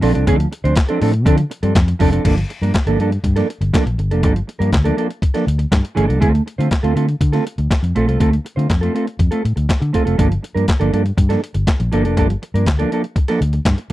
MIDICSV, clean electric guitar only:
0, 0, Header, 1, 3, 480
1, 0, Start_track
1, 0, Key_signature, -2, "minor"
1, 0, Tempo, 495868
1, 260, Time_signature, 4, 2, 24, 8
1, 13477, End_track
2, 0, Start_track
2, 0, Title_t, "Clean electric guitar"
2, 0, Program_c, 0, 27
2, 13, Note_on_c, 0, 53, 92
2, 21, Note_on_c, 0, 60, 95
2, 24, Note_on_c, 0, 62, 99
2, 30, Note_on_c, 0, 69, 105
2, 122, Note_off_c, 0, 69, 0
2, 129, Note_off_c, 0, 62, 0
2, 135, Note_off_c, 0, 60, 0
2, 140, Note_off_c, 0, 53, 0
2, 140, Note_on_c, 0, 62, 58
2, 147, Note_on_c, 0, 60, 53
2, 151, Note_on_c, 0, 53, 43
2, 244, Note_off_c, 0, 53, 0
2, 248, Note_off_c, 0, 62, 0
2, 252, Note_off_c, 0, 60, 0
2, 256, Note_on_c, 0, 53, 77
2, 263, Note_on_c, 0, 60, 75
2, 267, Note_on_c, 0, 62, 89
2, 272, Note_on_c, 0, 69, 102
2, 361, Note_off_c, 0, 69, 0
2, 370, Note_off_c, 0, 62, 0
2, 377, Note_off_c, 0, 60, 0
2, 453, Note_off_c, 0, 53, 0
2, 619, Note_on_c, 0, 72, 64
2, 624, Note_on_c, 0, 62, 56
2, 632, Note_on_c, 0, 60, 52
2, 637, Note_on_c, 0, 53, 53
2, 726, Note_off_c, 0, 53, 0
2, 727, Note_off_c, 0, 72, 0
2, 729, Note_off_c, 0, 62, 0
2, 734, Note_off_c, 0, 60, 0
2, 857, Note_on_c, 0, 69, 82
2, 868, Note_on_c, 0, 62, 78
2, 874, Note_on_c, 0, 60, 81
2, 880, Note_on_c, 0, 53, 61
2, 962, Note_off_c, 0, 53, 0
2, 969, Note_off_c, 0, 60, 0
2, 974, Note_on_c, 0, 53, 73
2, 976, Note_off_c, 0, 62, 0
2, 981, Note_off_c, 0, 69, 0
2, 981, Note_on_c, 0, 60, 71
2, 988, Note_on_c, 0, 62, 82
2, 993, Note_on_c, 0, 69, 75
2, 1084, Note_off_c, 0, 53, 0
2, 1087, Note_off_c, 0, 69, 0
2, 1088, Note_off_c, 0, 60, 0
2, 1091, Note_off_c, 0, 62, 0
2, 1212, Note_on_c, 0, 53, 86
2, 1223, Note_on_c, 0, 60, 95
2, 1228, Note_on_c, 0, 62, 96
2, 1231, Note_on_c, 0, 69, 101
2, 1322, Note_off_c, 0, 69, 0
2, 1330, Note_off_c, 0, 62, 0
2, 1334, Note_off_c, 0, 60, 0
2, 1353, Note_off_c, 0, 53, 0
2, 1574, Note_on_c, 0, 69, 60
2, 1581, Note_on_c, 0, 62, 53
2, 1586, Note_on_c, 0, 60, 44
2, 1592, Note_on_c, 0, 53, 44
2, 1681, Note_off_c, 0, 53, 0
2, 1684, Note_off_c, 0, 69, 0
2, 1687, Note_off_c, 0, 62, 0
2, 1688, Note_off_c, 0, 60, 0
2, 1929, Note_on_c, 0, 53, 97
2, 1935, Note_on_c, 0, 60, 82
2, 1943, Note_on_c, 0, 62, 95
2, 1947, Note_on_c, 0, 69, 96
2, 2039, Note_off_c, 0, 69, 0
2, 2044, Note_off_c, 0, 62, 0
2, 2051, Note_on_c, 0, 69, 59
2, 2053, Note_off_c, 0, 60, 0
2, 2056, Note_on_c, 0, 62, 58
2, 2057, Note_off_c, 0, 53, 0
2, 2065, Note_on_c, 0, 60, 60
2, 2069, Note_on_c, 0, 53, 50
2, 2161, Note_off_c, 0, 53, 0
2, 2162, Note_off_c, 0, 69, 0
2, 2165, Note_off_c, 0, 62, 0
2, 2169, Note_off_c, 0, 60, 0
2, 2172, Note_on_c, 0, 53, 75
2, 2180, Note_on_c, 0, 58, 82
2, 2190, Note_on_c, 0, 62, 82
2, 2192, Note_on_c, 0, 69, 85
2, 2283, Note_off_c, 0, 69, 0
2, 2289, Note_off_c, 0, 62, 0
2, 2295, Note_off_c, 0, 58, 0
2, 2313, Note_off_c, 0, 53, 0
2, 2535, Note_on_c, 0, 70, 48
2, 2541, Note_on_c, 0, 62, 52
2, 2546, Note_on_c, 0, 58, 46
2, 2553, Note_on_c, 0, 53, 38
2, 2640, Note_off_c, 0, 53, 0
2, 2644, Note_off_c, 0, 70, 0
2, 2646, Note_off_c, 0, 58, 0
2, 2647, Note_off_c, 0, 62, 0
2, 2778, Note_on_c, 0, 69, 81
2, 2781, Note_on_c, 0, 62, 64
2, 2789, Note_on_c, 0, 58, 78
2, 2796, Note_on_c, 0, 53, 69
2, 2888, Note_off_c, 0, 53, 0
2, 2895, Note_off_c, 0, 58, 0
2, 2900, Note_on_c, 0, 53, 57
2, 2903, Note_off_c, 0, 62, 0
2, 2906, Note_off_c, 0, 69, 0
2, 2907, Note_on_c, 0, 58, 51
2, 2914, Note_on_c, 0, 62, 62
2, 2918, Note_on_c, 0, 69, 63
2, 3006, Note_off_c, 0, 53, 0
2, 3010, Note_off_c, 0, 58, 0
2, 3011, Note_off_c, 0, 69, 0
2, 3014, Note_off_c, 0, 62, 0
2, 3251, Note_on_c, 0, 69, 74
2, 3260, Note_on_c, 0, 62, 68
2, 3265, Note_on_c, 0, 58, 62
2, 3270, Note_on_c, 0, 53, 54
2, 3365, Note_off_c, 0, 53, 0
2, 3369, Note_off_c, 0, 58, 0
2, 3375, Note_off_c, 0, 62, 0
2, 3379, Note_off_c, 0, 69, 0
2, 3613, Note_on_c, 0, 53, 70
2, 3619, Note_on_c, 0, 58, 80
2, 3625, Note_on_c, 0, 62, 70
2, 3632, Note_on_c, 0, 69, 78
2, 3722, Note_off_c, 0, 69, 0
2, 3729, Note_off_c, 0, 62, 0
2, 3736, Note_off_c, 0, 58, 0
2, 3753, Note_off_c, 0, 53, 0
2, 3980, Note_on_c, 0, 69, 61
2, 3988, Note_on_c, 0, 62, 49
2, 3994, Note_on_c, 0, 58, 49
2, 3999, Note_on_c, 0, 53, 49
2, 4082, Note_off_c, 0, 53, 0
2, 4087, Note_off_c, 0, 69, 0
2, 4089, Note_off_c, 0, 58, 0
2, 4091, Note_off_c, 0, 62, 0
2, 4094, Note_on_c, 0, 53, 79
2, 4100, Note_on_c, 0, 58, 67
2, 4105, Note_on_c, 0, 62, 78
2, 4112, Note_on_c, 0, 69, 80
2, 4199, Note_off_c, 0, 69, 0
2, 4208, Note_off_c, 0, 62, 0
2, 4214, Note_off_c, 0, 58, 0
2, 4234, Note_off_c, 0, 53, 0
2, 4443, Note_on_c, 0, 70, 60
2, 4452, Note_on_c, 0, 62, 51
2, 4459, Note_on_c, 0, 58, 49
2, 4463, Note_on_c, 0, 53, 41
2, 4557, Note_off_c, 0, 53, 0
2, 4559, Note_off_c, 0, 70, 0
2, 4563, Note_off_c, 0, 62, 0
2, 4565, Note_off_c, 0, 58, 0
2, 4689, Note_on_c, 0, 69, 81
2, 4697, Note_on_c, 0, 62, 78
2, 4701, Note_on_c, 0, 58, 67
2, 4707, Note_on_c, 0, 53, 68
2, 4793, Note_off_c, 0, 53, 0
2, 4800, Note_off_c, 0, 58, 0
2, 4805, Note_on_c, 0, 53, 54
2, 4808, Note_off_c, 0, 62, 0
2, 4811, Note_on_c, 0, 58, 62
2, 4814, Note_off_c, 0, 69, 0
2, 4819, Note_on_c, 0, 62, 58
2, 4826, Note_on_c, 0, 69, 70
2, 4919, Note_off_c, 0, 69, 0
2, 4920, Note_off_c, 0, 53, 0
2, 4923, Note_off_c, 0, 58, 0
2, 4927, Note_off_c, 0, 62, 0
2, 5169, Note_on_c, 0, 69, 67
2, 5175, Note_on_c, 0, 62, 66
2, 5182, Note_on_c, 0, 58, 61
2, 5186, Note_on_c, 0, 53, 59
2, 5278, Note_off_c, 0, 53, 0
2, 5283, Note_off_c, 0, 58, 0
2, 5286, Note_off_c, 0, 62, 0
2, 5289, Note_off_c, 0, 69, 0
2, 5758, Note_on_c, 0, 53, 90
2, 5766, Note_on_c, 0, 58, 90
2, 5774, Note_on_c, 0, 62, 92
2, 5780, Note_on_c, 0, 69, 94
2, 5870, Note_off_c, 0, 69, 0
2, 5875, Note_off_c, 0, 62, 0
2, 5883, Note_off_c, 0, 58, 0
2, 5887, Note_on_c, 0, 62, 51
2, 5888, Note_off_c, 0, 53, 0
2, 5895, Note_on_c, 0, 58, 47
2, 5899, Note_on_c, 0, 53, 47
2, 5997, Note_off_c, 0, 53, 0
2, 6001, Note_off_c, 0, 62, 0
2, 6001, Note_on_c, 0, 57, 81
2, 6005, Note_off_c, 0, 58, 0
2, 6009, Note_on_c, 0, 60, 82
2, 6012, Note_on_c, 0, 65, 86
2, 6017, Note_on_c, 0, 69, 81
2, 6119, Note_off_c, 0, 69, 0
2, 6128, Note_off_c, 0, 65, 0
2, 6134, Note_off_c, 0, 60, 0
2, 6205, Note_off_c, 0, 57, 0
2, 6371, Note_on_c, 0, 72, 50
2, 6380, Note_on_c, 0, 65, 57
2, 6384, Note_on_c, 0, 60, 54
2, 6389, Note_on_c, 0, 57, 49
2, 6479, Note_off_c, 0, 57, 0
2, 6484, Note_off_c, 0, 72, 0
2, 6487, Note_off_c, 0, 60, 0
2, 6488, Note_off_c, 0, 65, 0
2, 6612, Note_on_c, 0, 69, 81
2, 6618, Note_on_c, 0, 65, 79
2, 6626, Note_on_c, 0, 60, 72
2, 6630, Note_on_c, 0, 57, 73
2, 6716, Note_off_c, 0, 57, 0
2, 6723, Note_off_c, 0, 60, 0
2, 6727, Note_on_c, 0, 57, 57
2, 6731, Note_off_c, 0, 65, 0
2, 6734, Note_off_c, 0, 69, 0
2, 6735, Note_on_c, 0, 60, 53
2, 6743, Note_on_c, 0, 65, 58
2, 6746, Note_on_c, 0, 69, 59
2, 6841, Note_off_c, 0, 69, 0
2, 6842, Note_off_c, 0, 57, 0
2, 6845, Note_off_c, 0, 60, 0
2, 6849, Note_off_c, 0, 65, 0
2, 7090, Note_on_c, 0, 69, 70
2, 7096, Note_on_c, 0, 65, 74
2, 7103, Note_on_c, 0, 60, 70
2, 7111, Note_on_c, 0, 57, 54
2, 7207, Note_off_c, 0, 57, 0
2, 7212, Note_off_c, 0, 60, 0
2, 7217, Note_off_c, 0, 65, 0
2, 7221, Note_off_c, 0, 69, 0
2, 7698, Note_on_c, 0, 57, 75
2, 7704, Note_on_c, 0, 60, 78
2, 7710, Note_on_c, 0, 65, 81
2, 7714, Note_on_c, 0, 69, 87
2, 7807, Note_off_c, 0, 69, 0
2, 7815, Note_off_c, 0, 65, 0
2, 7819, Note_off_c, 0, 60, 0
2, 7819, Note_on_c, 0, 69, 54
2, 7827, Note_off_c, 0, 57, 0
2, 7827, Note_on_c, 0, 65, 47
2, 7830, Note_on_c, 0, 60, 47
2, 7839, Note_on_c, 0, 57, 44
2, 7924, Note_off_c, 0, 57, 0
2, 7928, Note_off_c, 0, 60, 0
2, 7928, Note_off_c, 0, 69, 0
2, 7931, Note_off_c, 0, 65, 0
2, 7935, Note_on_c, 0, 57, 71
2, 7940, Note_on_c, 0, 60, 87
2, 7946, Note_on_c, 0, 65, 74
2, 7952, Note_on_c, 0, 69, 84
2, 8044, Note_off_c, 0, 69, 0
2, 8052, Note_off_c, 0, 65, 0
2, 8057, Note_off_c, 0, 60, 0
2, 8076, Note_off_c, 0, 57, 0
2, 8286, Note_on_c, 0, 72, 54
2, 8297, Note_on_c, 0, 65, 47
2, 8301, Note_on_c, 0, 60, 42
2, 8307, Note_on_c, 0, 57, 40
2, 8401, Note_off_c, 0, 72, 0
2, 8405, Note_off_c, 0, 57, 0
2, 8407, Note_off_c, 0, 65, 0
2, 8409, Note_off_c, 0, 60, 0
2, 8530, Note_on_c, 0, 69, 79
2, 8540, Note_on_c, 0, 65, 71
2, 8546, Note_on_c, 0, 60, 68
2, 8551, Note_on_c, 0, 57, 55
2, 8643, Note_off_c, 0, 57, 0
2, 8649, Note_off_c, 0, 60, 0
2, 8655, Note_on_c, 0, 57, 61
2, 8656, Note_off_c, 0, 65, 0
2, 8660, Note_on_c, 0, 60, 64
2, 8661, Note_off_c, 0, 69, 0
2, 8668, Note_on_c, 0, 65, 59
2, 8673, Note_on_c, 0, 69, 69
2, 8766, Note_off_c, 0, 57, 0
2, 8768, Note_off_c, 0, 60, 0
2, 8768, Note_off_c, 0, 69, 0
2, 8772, Note_off_c, 0, 65, 0
2, 9011, Note_on_c, 0, 69, 61
2, 9018, Note_on_c, 0, 65, 57
2, 9023, Note_on_c, 0, 60, 56
2, 9030, Note_on_c, 0, 57, 54
2, 9125, Note_off_c, 0, 57, 0
2, 9130, Note_off_c, 0, 60, 0
2, 9132, Note_off_c, 0, 65, 0
2, 9139, Note_off_c, 0, 69, 0
2, 9610, Note_on_c, 0, 57, 60
2, 9616, Note_on_c, 0, 60, 76
2, 9624, Note_on_c, 0, 65, 83
2, 9629, Note_on_c, 0, 69, 86
2, 9717, Note_off_c, 0, 69, 0
2, 9722, Note_off_c, 0, 65, 0
2, 9728, Note_on_c, 0, 69, 57
2, 9731, Note_off_c, 0, 60, 0
2, 9734, Note_on_c, 0, 65, 52
2, 9736, Note_off_c, 0, 57, 0
2, 9742, Note_on_c, 0, 60, 42
2, 9748, Note_on_c, 0, 57, 52
2, 9842, Note_off_c, 0, 69, 0
2, 9845, Note_off_c, 0, 65, 0
2, 9848, Note_off_c, 0, 57, 0
2, 9849, Note_off_c, 0, 60, 0
2, 9852, Note_on_c, 0, 53, 78
2, 9859, Note_on_c, 0, 58, 84
2, 9864, Note_on_c, 0, 62, 84
2, 9870, Note_on_c, 0, 69, 70
2, 9960, Note_off_c, 0, 69, 0
2, 9964, Note_off_c, 0, 62, 0
2, 9975, Note_off_c, 0, 58, 0
2, 9994, Note_off_c, 0, 53, 0
2, 10208, Note_on_c, 0, 70, 55
2, 10216, Note_on_c, 0, 62, 52
2, 10222, Note_on_c, 0, 58, 47
2, 10228, Note_on_c, 0, 53, 47
2, 10322, Note_off_c, 0, 70, 0
2, 10323, Note_off_c, 0, 53, 0
2, 10326, Note_off_c, 0, 62, 0
2, 10329, Note_off_c, 0, 58, 0
2, 10450, Note_on_c, 0, 69, 74
2, 10459, Note_on_c, 0, 62, 74
2, 10467, Note_on_c, 0, 58, 74
2, 10471, Note_on_c, 0, 53, 66
2, 10559, Note_off_c, 0, 53, 0
2, 10567, Note_off_c, 0, 58, 0
2, 10571, Note_on_c, 0, 53, 58
2, 10575, Note_off_c, 0, 62, 0
2, 10579, Note_on_c, 0, 58, 59
2, 10580, Note_off_c, 0, 69, 0
2, 10587, Note_on_c, 0, 62, 58
2, 10592, Note_on_c, 0, 69, 65
2, 10680, Note_off_c, 0, 69, 0
2, 10684, Note_off_c, 0, 53, 0
2, 10688, Note_off_c, 0, 58, 0
2, 10688, Note_off_c, 0, 62, 0
2, 10929, Note_on_c, 0, 69, 69
2, 10938, Note_on_c, 0, 62, 75
2, 10944, Note_on_c, 0, 58, 60
2, 10950, Note_on_c, 0, 53, 59
2, 11042, Note_off_c, 0, 53, 0
2, 11047, Note_off_c, 0, 58, 0
2, 11051, Note_off_c, 0, 62, 0
2, 11056, Note_off_c, 0, 69, 0
2, 11534, Note_on_c, 0, 53, 83
2, 11545, Note_on_c, 0, 58, 88
2, 11548, Note_on_c, 0, 62, 86
2, 11555, Note_on_c, 0, 69, 94
2, 11648, Note_off_c, 0, 69, 0
2, 11659, Note_off_c, 0, 62, 0
2, 11660, Note_on_c, 0, 69, 57
2, 11665, Note_off_c, 0, 58, 0
2, 11671, Note_off_c, 0, 53, 0
2, 11671, Note_on_c, 0, 62, 52
2, 11676, Note_on_c, 0, 58, 51
2, 11682, Note_on_c, 0, 53, 39
2, 11765, Note_off_c, 0, 53, 0
2, 11768, Note_off_c, 0, 69, 0
2, 11773, Note_off_c, 0, 62, 0
2, 11774, Note_off_c, 0, 58, 0
2, 11777, Note_on_c, 0, 53, 75
2, 11785, Note_on_c, 0, 58, 72
2, 11791, Note_on_c, 0, 62, 83
2, 11796, Note_on_c, 0, 69, 88
2, 11889, Note_off_c, 0, 69, 0
2, 11896, Note_off_c, 0, 62, 0
2, 11901, Note_off_c, 0, 58, 0
2, 11916, Note_off_c, 0, 53, 0
2, 12141, Note_on_c, 0, 70, 47
2, 12146, Note_on_c, 0, 62, 46
2, 12154, Note_on_c, 0, 58, 51
2, 12159, Note_on_c, 0, 53, 41
2, 12248, Note_off_c, 0, 70, 0
2, 12251, Note_off_c, 0, 62, 0
2, 12252, Note_off_c, 0, 53, 0
2, 12254, Note_off_c, 0, 58, 0
2, 12378, Note_on_c, 0, 69, 71
2, 12386, Note_on_c, 0, 62, 76
2, 12393, Note_on_c, 0, 58, 75
2, 12400, Note_on_c, 0, 53, 69
2, 12488, Note_off_c, 0, 53, 0
2, 12493, Note_off_c, 0, 58, 0
2, 12500, Note_off_c, 0, 62, 0
2, 12500, Note_on_c, 0, 53, 62
2, 12505, Note_on_c, 0, 58, 62
2, 12508, Note_off_c, 0, 69, 0
2, 12512, Note_on_c, 0, 62, 65
2, 12520, Note_on_c, 0, 69, 72
2, 12607, Note_off_c, 0, 53, 0
2, 12610, Note_off_c, 0, 58, 0
2, 12612, Note_off_c, 0, 69, 0
2, 12613, Note_off_c, 0, 62, 0
2, 12858, Note_on_c, 0, 69, 76
2, 12866, Note_on_c, 0, 62, 67
2, 12868, Note_on_c, 0, 58, 72
2, 12878, Note_on_c, 0, 53, 62
2, 12970, Note_off_c, 0, 53, 0
2, 12977, Note_off_c, 0, 58, 0
2, 12981, Note_off_c, 0, 62, 0
2, 12986, Note_off_c, 0, 69, 0
2, 13477, End_track
3, 0, Start_track
3, 0, Title_t, "Muted clean electric guitar strokes"
3, 373, Note_on_c, 9, 29, 53
3, 470, Note_off_c, 9, 29, 0
3, 498, Note_on_c, 9, 29, 38
3, 595, Note_off_c, 9, 29, 0
3, 737, Note_on_c, 9, 29, 37
3, 834, Note_off_c, 9, 29, 0
3, 1099, Note_on_c, 9, 29, 38
3, 1196, Note_off_c, 9, 29, 0
3, 1333, Note_on_c, 9, 29, 49
3, 1430, Note_off_c, 9, 29, 0
3, 1450, Note_on_c, 9, 29, 44
3, 1547, Note_off_c, 9, 29, 0
3, 1815, Note_on_c, 9, 29, 49
3, 1912, Note_off_c, 9, 29, 0
3, 2295, Note_on_c, 9, 29, 41
3, 2392, Note_off_c, 9, 29, 0
3, 2416, Note_on_c, 9, 29, 30
3, 2513, Note_off_c, 9, 29, 0
3, 2651, Note_on_c, 9, 29, 37
3, 2748, Note_off_c, 9, 29, 0
3, 3022, Note_on_c, 9, 29, 40
3, 3119, Note_off_c, 9, 29, 0
3, 3140, Note_on_c, 9, 29, 39
3, 3237, Note_off_c, 9, 29, 0
3, 3496, Note_on_c, 9, 29, 37
3, 3593, Note_off_c, 9, 29, 0
3, 3733, Note_on_c, 9, 29, 43
3, 3830, Note_off_c, 9, 29, 0
3, 3857, Note_on_c, 9, 29, 41
3, 3954, Note_off_c, 9, 29, 0
3, 4211, Note_on_c, 9, 29, 46
3, 4308, Note_off_c, 9, 29, 0
3, 4331, Note_on_c, 9, 29, 35
3, 4428, Note_off_c, 9, 29, 0
3, 4930, Note_on_c, 9, 29, 52
3, 5027, Note_off_c, 9, 29, 0
3, 5054, Note_on_c, 9, 29, 39
3, 5151, Note_off_c, 9, 29, 0
3, 5407, Note_on_c, 9, 29, 47
3, 5503, Note_off_c, 9, 29, 0
3, 5529, Note_on_c, 9, 29, 37
3, 5625, Note_off_c, 9, 29, 0
3, 5647, Note_on_c, 9, 29, 37
3, 5744, Note_off_c, 9, 29, 0
3, 6131, Note_on_c, 9, 29, 44
3, 6228, Note_off_c, 9, 29, 0
3, 6253, Note_on_c, 9, 29, 34
3, 6350, Note_off_c, 9, 29, 0
3, 6852, Note_on_c, 9, 29, 38
3, 6949, Note_off_c, 9, 29, 0
3, 6975, Note_on_c, 9, 29, 47
3, 7072, Note_off_c, 9, 29, 0
3, 7218, Note_on_c, 9, 29, 30
3, 7315, Note_off_c, 9, 29, 0
3, 7342, Note_on_c, 9, 29, 35
3, 7439, Note_off_c, 9, 29, 0
3, 7468, Note_on_c, 9, 29, 36
3, 7565, Note_off_c, 9, 29, 0
3, 7582, Note_on_c, 9, 29, 33
3, 7679, Note_off_c, 9, 29, 0
3, 8056, Note_on_c, 9, 29, 45
3, 8153, Note_off_c, 9, 29, 0
3, 8176, Note_on_c, 9, 29, 42
3, 8273, Note_off_c, 9, 29, 0
3, 8780, Note_on_c, 9, 29, 41
3, 8877, Note_off_c, 9, 29, 0
3, 8896, Note_on_c, 9, 29, 31
3, 8993, Note_off_c, 9, 29, 0
3, 9137, Note_on_c, 9, 29, 35
3, 9234, Note_off_c, 9, 29, 0
3, 9253, Note_on_c, 9, 29, 42
3, 9350, Note_off_c, 9, 29, 0
3, 9378, Note_on_c, 9, 29, 35
3, 9474, Note_off_c, 9, 29, 0
3, 9490, Note_on_c, 9, 29, 42
3, 9587, Note_off_c, 9, 29, 0
3, 9971, Note_on_c, 9, 29, 37
3, 10068, Note_off_c, 9, 29, 0
3, 10092, Note_on_c, 9, 29, 42
3, 10189, Note_off_c, 9, 29, 0
3, 10692, Note_on_c, 9, 29, 38
3, 10789, Note_off_c, 9, 29, 0
3, 10813, Note_on_c, 9, 29, 45
3, 10910, Note_off_c, 9, 29, 0
3, 11054, Note_on_c, 9, 29, 36
3, 11151, Note_off_c, 9, 29, 0
3, 11173, Note_on_c, 9, 29, 41
3, 11270, Note_off_c, 9, 29, 0
3, 11293, Note_on_c, 9, 29, 39
3, 11390, Note_off_c, 9, 29, 0
3, 11416, Note_on_c, 9, 29, 44
3, 11513, Note_off_c, 9, 29, 0
3, 11900, Note_on_c, 9, 29, 38
3, 11997, Note_off_c, 9, 29, 0
3, 12024, Note_on_c, 9, 29, 42
3, 12121, Note_off_c, 9, 29, 0
3, 12623, Note_on_c, 9, 29, 46
3, 12720, Note_off_c, 9, 29, 0
3, 12745, Note_on_c, 9, 29, 44
3, 12842, Note_off_c, 9, 29, 0
3, 13101, Note_on_c, 9, 29, 40
3, 13197, Note_off_c, 9, 29, 0
3, 13227, Note_on_c, 9, 29, 38
3, 13323, Note_off_c, 9, 29, 0
3, 13336, Note_on_c, 9, 29, 44
3, 13433, Note_off_c, 9, 29, 0
3, 13477, End_track
0, 0, End_of_file